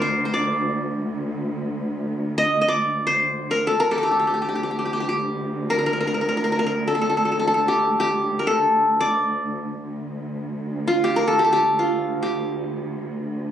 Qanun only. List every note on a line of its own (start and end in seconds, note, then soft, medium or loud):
0.00 1.01 A#4 medium
0.00 0.25 C5 medium
0.00 0.33 D5 medium
0.25 1.31 C5 medium
0.34 1.83 D5 medium
2.38 2.61 D#5 medium
2.61 2.74 D#5 medium
2.68 3.67 D5 medium
3.07 4.12 C5 medium
3.51 3.73 A#4 medium
3.67 3.86 A4 medium
3.80 3.97 A#4 medium
3.91 4.03 G4 medium
3.91 3.97 A4 medium
3.98 5.15 A4 medium
4.03 4.11 G4 medium
4.11 4.19 G4 soft
4.19 4.27 G4 soft
4.27 4.33 G4 soft
4.34 4.41 G4 soft
4.42 4.48 G4 soft
4.49 4.55 G4 soft
4.55 4.63 G4 soft
4.63 4.71 G4 soft
4.71 4.78 G4 soft
4.79 4.85 G4 soft
4.85 4.93 G4 soft
4.93 5.00 G4 soft
5.00 5.08 G4 soft
5.09 6.34 G4 medium
5.70 5.78 A#4 medium
5.79 5.86 A#4 soft
5.86 5.93 A#4 medium
5.93 6.00 A#4 soft
6.00 6.07 A#4 soft
6.07 6.14 A#4 soft
6.14 6.21 A#4 soft
6.21 6.28 A#4 soft
6.29 6.37 A#4 medium
6.37 6.44 A#4 soft
6.44 6.52 A#4 soft
6.52 6.59 A#4 soft
6.59 6.66 A#4 medium
6.66 6.94 A#4 soft
6.88 6.94 A4 medium
6.95 7.01 A4 soft
7.01 7.09 A4 medium
7.10 7.17 A4 soft
7.17 7.25 A4 soft
7.25 7.31 A4 soft
7.32 7.39 A4 soft
7.40 7.47 A4 soft
7.47 7.54 A4 medium
7.54 8.45 A4 soft
7.68 7.99 G4 medium
8.00 9.25 G4 medium
8.39 8.53 A#4 medium
8.47 9.64 A4 medium
9.01 10.04 D5 medium
10.88 11.79 F4 medium
11.04 11.39 G4 medium
11.16 11.34 A#4 medium
11.28 11.44 A4 medium
11.39 11.52 G4 medium
11.44 12.62 A4 medium
11.53 12.22 G4 medium
11.79 13.14 F4 medium
12.23 13.48 G4 medium